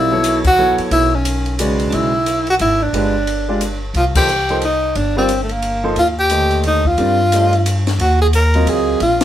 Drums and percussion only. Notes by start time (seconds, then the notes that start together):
0.24 hi-hat pedal, ride
0.44 kick, crash
0.78 ride
0.91 ride
1.25 hi-hat pedal, ride
1.46 ride
1.59 hi-hat pedal, ride
1.79 ride
1.92 ride
2.26 hi-hat pedal, ride
2.47 ride
2.59 ride
2.94 ride
3.27 ride
3.61 hi-hat pedal, ride
3.94 ride
4.15 kick, crash
4.28 hi-hat pedal
4.49 ride
4.62 ride
4.95 ride
5.29 hi-hat pedal, ride
5.49 ride
5.62 ride
5.96 ride
6.30 hi-hat pedal, ride
6.51 ride
6.64 ride
6.85 kick
6.98 ride
7.32 hi-hat pedal, ride
7.53 ride
7.66 hi-hat pedal, ride
7.87 snare, ride
7.99 ride
8.33 hi-hat pedal, ride
8.54 ride
8.67 ride
9.00 ride
9.21 snare, ride